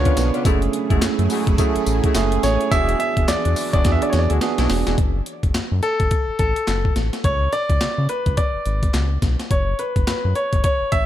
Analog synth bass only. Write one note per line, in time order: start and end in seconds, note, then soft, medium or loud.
0.00 0.12 C#2 loud
0.17 0.31 B1 medium
0.45 0.69 F#1 loud
0.91 1.00 F#1 medium
1.02 1.09 F#2 soft
1.19 1.28 F#2 medium
1.47 1.57 F#1 medium
1.76 1.80 A1 soft
1.87 2.01 A1 medium
2.15 2.39 F#1 loud
2.44 2.58 A1 loud
2.72 2.95 E1 loud
3.17 3.26 E1 medium
3.28 3.35 E2 medium
3.46 3.55 E2 loud
3.74 3.83 E1 loud
3.85 3.99 E2 loud
4.13 4.28 E2 loud
4.30 4.40 D2 medium
4.59 4.68 B1 loud
4.70 4.84 E1 medium
4.87 4.96 E1 loud
4.98 5.22 F#1 loud
5.43 5.53 F#1 medium
5.55 5.62 F#2 soft
5.72 5.81 F#2 loud
6.00 6.09 F#1 medium
6.28 6.33 A1 soft
6.39 6.54 A1 medium
6.68 6.92 F#1 medium
6.96 7.11 A1 medium
7.24 7.48 C#2 loud
7.70 7.79 C#2 medium
7.81 7.88 C#3 soft
7.98 8.08 C#3 medium
8.26 8.36 C#2 medium
8.55 8.59 G#1 soft
8.66 8.90 G#1 medium
8.94 9.18 C#2 medium
9.22 9.37 B1 medium
9.51 9.75 F#1 loud
9.96 10.06 F#1 medium
10.08 10.14 F#2 soft
10.25 10.34 F#2 medium
10.53 10.62 F#1 medium
10.81 10.86 A1 soft
10.92 11.06 A1 medium